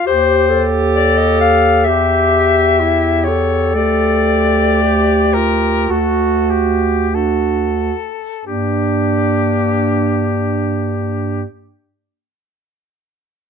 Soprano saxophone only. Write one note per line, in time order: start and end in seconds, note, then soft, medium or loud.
0.07 0.65 C5 medium
0.96 1.19 D5 medium
1.17 1.40 D#5 medium
1.40 1.86 F5 medium
1.84 3.26 E5 medium
3.24 3.74 C#5 medium
3.75 5.35 D5 medium
5.33 5.92 A#4 medium
5.91 6.52 A4 soft
6.50 7.16 G4 medium
7.15 8.46 A4 soft
8.46 11.44 G4 medium